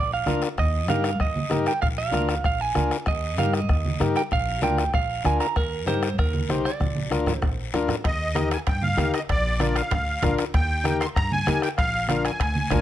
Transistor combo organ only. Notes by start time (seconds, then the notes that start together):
0.26 D4 F4 A#4
0.89 D#4 G4 A#4
1.50 D#4 G4 A#4
2.12 D4 F4 A#4
2.75 D4 F4 A#4
3.38 D#4 G4 A#4
4.00 D#4 G4 A#4
4.62 D4 F4 A#4
5.24 D4 F4 A#4
5.86 D#4 G4 A#4
6.49 D#4 G4 C5
7.11 D4 F4 A#4
7.74 D4 F4 A#4
8.35 D#4 G4 A#4
8.97 D#4 G4 A#4
9.60 D4 F4 A#4
10.23 D4 F4 A#4
10.84 D#4 G4 A#4
11.47 D#4 G4 A#4
12.09 D4 F4 A#4
12.71 D4 F4 A#4